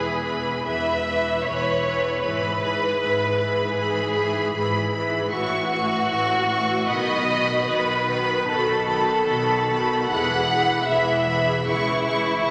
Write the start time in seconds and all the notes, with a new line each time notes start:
Already playing: E1 E2 E3 G#4 B4 B5
0.22 E3 B4 B5
0.65 E1 E2 E3 B4 E5 B5
1.07 E3 B4 B5
1.45 E1 E2 E3 B4 C#5 B5
1.85 E3 B4 B5
2.23 G#1 G#2 E3 G#4 B4 B5
2.63 E3 G#4 B5
3.00 G#1 G#2 E3 G#4 B5
3.39 E3 G#4 B5
3.75 G#1 G#2 E3 G#4 B5
4.15 E3 G#4 B5
4.54 G#1 G#2 E3 G#4 B5
4.92 E3 G#4 B5
5.31 A1 A2 E3 F#4 C#6
5.71 E3 F#4 C#6
6.09 A1 A2 E3 F#4 C#6
6.49 E3 F#4 C#6
6.88 B1 B2 D#3 F#4 D#5 B5
7.28 D#3 F#4 B5
7.67 B1 B2 D#3 F#4 B4 B5
8.09 D#3 F#4 B5
8.48 B1 B2 D#3 F#4 A4 B5
8.87 D#3 F#4 B5
9.27 B1 B2 D#3 F#4 B5
9.68 D#3 F#4 B5
10.10 E1 E2 E3 G#4 F#5 B5
10.50 E3 G#4 B5
10.89 E1 E2 E3 G#4 E5 B5
11.27 E3 G#4 B5
11.67 C#2 E3 E4 G#4 C#6
12.05 E3 G#4 C#6
12.43 C#2 E3 G#4 C#6